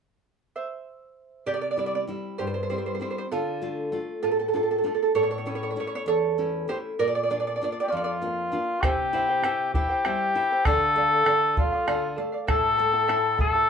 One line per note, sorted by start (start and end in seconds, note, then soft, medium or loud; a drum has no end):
0.56 1.43 C5 medium
0.56 1.50 E5 medium
1.46 2.06 C3 medium
1.46 1.54 G4 medium
1.46 1.53 D5 medium
1.54 1.60 D5 medium
1.62 1.69 D5 soft
1.71 1.77 D5 soft
1.76 2.06 G3 soft
1.76 2.07 C4 soft
1.76 2.07 E4 soft
1.76 1.85 D5 medium
1.86 1.94 D5 soft
1.95 2.02 D5 medium
2.07 2.57 G3 soft
2.07 2.57 C4 soft
2.07 2.57 E4 soft
2.38 2.99 G2 soft
2.38 2.46 G4 soft
2.38 2.46 C5 medium
2.47 2.53 C5 soft
2.54 2.62 C5 soft
2.63 2.69 C5 soft
2.70 2.99 G3 soft
2.70 2.99 C4 soft
2.70 3.00 E4 soft
2.70 2.77 C5 soft
2.78 2.85 C5 soft
2.86 2.93 C5 soft
2.95 3.01 C5 soft
3.00 3.25 G3 soft
3.00 3.25 C4 soft
3.00 3.25 E4 soft
3.00 3.09 C5 soft
3.10 3.17 C5 soft
3.18 3.26 C5 medium
3.32 3.91 D3 medium
3.32 4.19 F4 medium
3.32 4.21 A4 medium
3.62 3.91 A3 soft
3.62 3.91 D4 soft
3.62 3.92 F4 soft
3.92 4.41 A3 soft
3.92 4.41 D4 soft
3.92 4.42 F4 soft
4.23 4.82 A2 medium
4.23 4.31 F4 soft
4.23 4.30 A4 medium
4.32 4.38 A4 soft
4.39 4.47 A4 soft
4.48 4.54 A4 soft
4.53 4.82 A3 soft
4.53 4.82 D4 soft
4.53 4.83 F4 soft
4.53 4.62 A4 soft
4.63 4.70 A4 soft
4.71 4.77 A4 soft
4.78 4.85 A4 soft
4.83 5.08 A3 soft
4.83 5.08 D4 soft
4.83 5.09 F4 soft
4.83 4.93 A4 soft
4.95 5.01 A4 soft
5.03 5.10 A4 soft
5.15 5.74 A2 medium
5.15 5.22 A4 medium
5.15 5.22 C#5 medium
5.23 5.30 C#5 medium
5.31 5.37 C#5 medium
5.38 5.45 C#5 soft
5.46 5.75 A3 soft
5.46 5.75 C#4 soft
5.46 5.76 E4 soft
5.46 5.54 C#5 medium
5.55 5.62 C#5 soft
5.63 5.69 C#5 medium
5.71 5.79 C#5 soft
5.76 6.25 A3 soft
5.76 6.25 C#4 soft
5.76 6.26 E4 soft
5.76 5.86 C#5 medium
5.87 5.94 C#5 medium
5.95 6.03 C#5 medium
6.06 6.66 E2 medium
6.06 6.64 A4 medium
6.06 6.69 C#5 medium
6.38 6.67 A3 soft
6.38 6.67 C#4 soft
6.38 6.68 E4 soft
6.68 6.92 A3 soft
6.68 6.93 C#4 soft
6.68 6.93 E4 soft
6.68 6.77 G4 medium
6.68 6.77 C5 medium
6.99 7.58 A#2 medium
6.99 7.06 A#4 medium
6.99 7.06 D5 medium
7.08 7.14 D5 medium
7.15 7.22 D5 medium
7.23 7.29 D5 soft
7.30 7.60 A#3 soft
7.30 7.61 D4 soft
7.30 7.61 F4 soft
7.30 7.38 D5 medium
7.40 7.46 D5 soft
7.47 7.54 D5 medium
7.56 7.62 D5 soft
7.61 8.10 A#3 soft
7.61 8.10 D4 soft
7.61 8.10 F4 soft
7.61 7.70 D5 medium
7.72 7.78 D5 soft
7.80 7.92 G4 soft
7.80 7.86 D5 medium
7.88 8.83 F4 medium
7.88 7.94 D5 soft
7.92 8.51 F2 medium
7.97 8.03 D5 medium
8.04 8.10 D5 medium
8.22 8.51 A#3 soft
8.22 8.51 D4 soft
8.22 8.52 F4 soft
8.52 8.76 A#3 soft
8.52 8.76 D4 soft
8.52 8.77 F4 soft
8.81 9.43 C3 medium
8.81 9.13 E4 medium
8.81 9.73 G4 medium
8.81 9.13 G4 medium
8.81 9.13 C5 medium
8.81 9.12 E5 medium
8.81 9.14 G5 medium
8.81 bombo rim medium
8.81 bombo low medium
9.13 9.43 E4 medium
9.13 9.29 E4 medium
9.13 9.28 C5 medium
9.13 9.28 E5 medium
9.13 9.27 G5 medium
9.28 9.44 E4 soft
9.28 9.44 C5 soft
9.28 9.43 G5 soft
9.44 9.73 C3 medium
9.44 9.73 E4 medium
9.44 9.74 G4 medium
9.44 9.74 C5 medium
9.44 9.73 E5 medium
9.44 9.75 G5 medium
9.44 bombo rim medium
9.74 9.89 E4 medium
9.74 10.04 E4 medium
9.74 10.66 G4 medium
9.74 9.88 C5 medium
9.74 9.90 E5 medium
9.74 9.88 G5 medium
9.74 bombo rim soft
9.74 bombo low medium
9.89 10.04 E4 soft
9.89 10.05 C5 soft
9.89 10.04 G5 medium
10.05 10.35 G3 soft
10.05 10.35 E4 medium
10.05 10.35 G4 medium
10.05 10.35 C5 medium
10.05 10.34 E5 medium
10.05 10.36 G5 medium
10.05 bombo rim medium
10.35 10.65 E4 soft
10.35 10.51 E4 medium
10.35 10.51 C5 medium
10.35 10.51 E5 medium
10.35 10.50 G5 medium
10.51 10.66 E4 soft
10.51 10.66 C5 soft
10.51 10.66 G5 medium
10.65 11.25 D3 medium
10.65 11.57 A4 loud
10.65 10.95 A4 medium
10.65 10.96 D5 medium
10.65 10.96 F5 medium
10.65 bombo rim medium
10.65 bombo low medium
10.96 11.25 A3 soft
10.96 11.11 A4 medium
10.96 11.12 D5 medium
10.96 11.10 F5 medium
11.11 11.26 D5 soft
11.11 11.26 F5 soft
11.26 11.56 D3 medium
11.26 11.56 A4 medium
11.26 11.57 D5 medium
11.26 11.57 F5 medium
11.26 bombo rim medium
11.57 11.87 A3 medium
11.57 12.16 F4 medium
11.57 11.72 A4 medium
11.57 11.73 D5 medium
11.57 11.71 F5 medium
11.57 bombo rim soft
11.57 bombo low medium
11.72 11.86 D5 soft
11.72 11.87 F5 medium
11.87 12.17 D3 medium
11.87 12.15 A4 medium
11.87 12.16 D5 medium
11.87 12.17 F5 medium
11.87 bombo rim medium
12.16 12.48 A3 soft
12.16 12.32 A4 medium
12.16 12.32 D5 medium
12.16 12.31 F5 medium
12.32 12.48 D5 soft
12.32 12.47 F5 medium
12.47 13.70 A2 medium
12.47 12.77 E4 medium
12.47 12.76 A4 medium
12.47 13.36 A4 loud
12.47 12.78 C#5 medium
12.47 12.75 E5 medium
12.47 12.77 A5 medium
12.47 bombo rim medium
12.47 bombo low medium
12.77 13.09 A3 medium
12.77 12.92 E4 medium
12.77 12.92 A4 medium
12.77 12.93 E5 medium
12.77 12.91 A5 medium
12.92 13.07 E4 soft
12.92 13.07 A4 soft
12.92 13.07 A5 soft
13.08 13.37 E4 medium
13.08 13.39 E4 medium
13.08 13.37 A4 medium
13.08 13.39 C#5 medium
13.08 13.36 E5 medium
13.08 13.37 A5 medium
13.08 bombo rim medium
13.37 13.70 A3 medium
13.37 13.54 E4 medium
13.37 13.53 A4 medium
13.37 13.70 A4 medium
13.37 13.54 E5 medium
13.37 13.52 A5 medium
13.37 bombo rim soft
13.37 bombo low medium
13.53 13.69 E4 soft
13.53 13.69 A4 soft
13.53 13.69 A5 medium